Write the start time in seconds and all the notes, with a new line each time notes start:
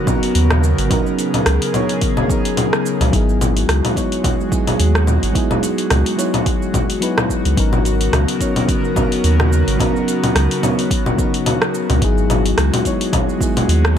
Already playing: C#3 F#3 B3 C#4 D#4 F#4 A#4 C#5
0.04 F#3 B3 C#4 D#4, kick, low conga, shaker
0.09 A#4
0.23 open hi-hat, shaker
0.35 D#2, open hi-hat, shaker
0.50 cross-stick, low conga, shaker
0.64 shaker
0.78 G#1, open hi-hat, shaker
0.88 F#3 B3 C#4 G#4, kick, open hi-hat, low conga, shaker
0.92 D#4 A#4
1.07 shaker
1.19 open hi-hat, shaker
1.34 open hi-hat, low conga, shaker
1.46 C#2, cross-stick, open hi-hat, shaker
1.62 open hi-hat, shaker
1.73 F#3 B3 C#4 D#4 C#5, open hi-hat, low conga, shaker
1.89 open hi-hat, shaker
2.01 kick, open hi-hat, shaker
2.17 low conga, shaker
2.27 F#3 B3 C#4 D#4, kick, shaker
2.32 A#4
2.45 open hi-hat, shaker
2.57 open hi-hat, low conga, shaker
2.73 cross-stick, shaker
2.86 shaker
3.01 C#2, open hi-hat, low conga, shaker
3.10 G#1 F#3 G#3 B3 D#4 E4 F#4, kick, open hi-hat, shaker
3.15 G#4
3.29 shaker
3.41 open hi-hat, low conga, shaker
3.57 open hi-hat, shaker
3.68 C#2, cross-stick, open hi-hat, shaker
3.85 open hi-hat, low conga, shaker
3.95 F#3 B3 D#4 E4 C#5, kick, open hi-hat, shaker
4.12 open hi-hat, shaker
4.24 kick, open hi-hat, low conga, shaker
4.40 shaker
4.49 F#3 B3 D#4 E4, kick, shaker
4.54 G#4
4.67 open hi-hat, low conga, shaker
4.80 D#2, open hi-hat, shaker
4.95 cross-stick, shaker
5.07 low conga, shaker
5.23 G#1, open hi-hat, shaker
5.32 F#3 B3 D#4 E4, kick, open hi-hat, shaker
5.37 G#4
5.51 low conga, shaker
5.63 open hi-hat, shaker
5.78 open hi-hat, shaker
5.90 C#2, cross-stick, open hi-hat, low conga, shaker
6.06 open hi-hat, shaker
6.16 F#3 B3 D#4 E4 C#5, open hi-hat, shaker
6.34 open hi-hat, low conga, shaker
6.46 kick, open hi-hat, shaker
6.62 shaker
6.74 kick, open hi-hat, low conga, shaker
6.90 open hi-hat, shaker
7.00 F#3 B3 D#4 E4 B4, open hi-hat, shaker
7.18 cross-stick, low conga, shaker
7.29 kick, shaker
7.45 C#2, open hi-hat, shaker
7.55 G#1 C#3 F#3 B3 C#4 D#4 A#4, kick, open hi-hat, shaker
7.60 A#4
7.73 low conga, shaker
7.85 open hi-hat, shaker
8.01 open hi-hat, shaker
8.13 C#2, cross-stick, open hi-hat, low conga, shaker
8.28 open hi-hat, shaker
8.39 F#3 B3 C#4 D#4 C#5, kick, open hi-hat, shaker
8.56 open hi-hat, low conga, shaker
8.68 kick, open hi-hat, shaker
8.84 shaker
8.94 F#3 B3 C#4, kick, low conga, shaker
8.98 D#4 A#4
9.12 open hi-hat, shaker
9.24 D#2, open hi-hat, shaker
9.40 cross-stick, low conga, shaker
9.53 shaker
9.67 G#1, open hi-hat, shaker
9.77 F#3 B3 C#4 D#4, kick, open hi-hat, low conga, shaker
9.82 A#4
9.96 shaker
10.08 open hi-hat, shaker
10.24 open hi-hat, low conga, shaker
10.35 C#2, cross-stick, open hi-hat, shaker
10.51 open hi-hat, shaker
10.62 F#3 B3 C#4 D#4 C#5, open hi-hat, low conga, shaker
10.79 open hi-hat, shaker
10.91 kick, open hi-hat, shaker
11.06 low conga, shaker
11.16 F#3 B3 C#4, kick, shaker
11.20 D#4 A#4
11.34 open hi-hat, shaker
11.46 open hi-hat, low conga, shaker
11.62 cross-stick, shaker
11.74 shaker
11.90 C#2, open hi-hat, low conga, shaker
11.99 G#1 F#3 G#3 B3 D#4 E4, kick, open hi-hat, shaker
12.04 G#4
12.18 shaker
12.30 open hi-hat, low conga, shaker
12.46 open hi-hat, shaker
12.58 C#2, cross-stick, open hi-hat, shaker
12.74 open hi-hat, low conga, shaker
12.84 F#3 B3 D#4 E4 C#5, kick, open hi-hat, shaker
13.01 open hi-hat, shaker
13.13 kick, open hi-hat, low conga, shaker
13.29 shaker
13.38 F#3 B3 D#4 E4, kick, shaker
13.43 G#4
13.57 open hi-hat, low conga, shaker
13.68 D#2, open hi-hat, shaker
13.85 cross-stick, shaker